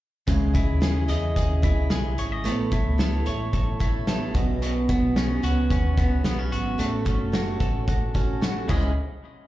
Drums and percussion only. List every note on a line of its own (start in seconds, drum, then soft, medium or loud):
0.28 kick medium
0.28 closed hi-hat medium
0.55 kick medium
0.55 closed hi-hat medium
0.82 snare loud
0.82 closed hi-hat medium
1.09 closed hi-hat medium
1.36 kick medium
1.36 closed hi-hat medium
1.63 kick medium
1.63 closed hi-hat medium
1.90 snare loud
1.90 closed hi-hat medium
2.18 closed hi-hat medium
2.45 closed hi-hat medium
2.72 kick medium
2.72 closed hi-hat medium
2.99 snare loud
2.99 closed hi-hat medium
3.26 closed hi-hat medium
3.53 kick medium
3.53 closed hi-hat medium
3.80 kick medium
3.80 closed hi-hat medium
4.07 snare loud
4.07 closed hi-hat medium
4.35 kick loud
4.35 closed hi-hat medium
4.62 closed hi-hat medium
4.89 kick medium
4.89 closed hi-hat medium
5.16 snare loud
5.16 closed hi-hat medium
5.43 closed hi-hat medium
5.70 kick medium
5.70 closed hi-hat medium
5.98 kick medium
5.98 closed hi-hat medium
6.24 snare loud
6.24 closed hi-hat loud
6.52 closed hi-hat medium
6.79 closed hi-hat medium
7.06 kick medium
7.06 closed hi-hat medium
7.33 snare loud
7.33 closed hi-hat medium
7.60 kick medium
7.60 closed hi-hat medium
7.88 kick medium
7.88 closed hi-hat medium
8.15 kick medium
8.15 closed hi-hat medium
8.42 snare loud
8.42 closed hi-hat medium
8.69 kick medium
8.69 crash medium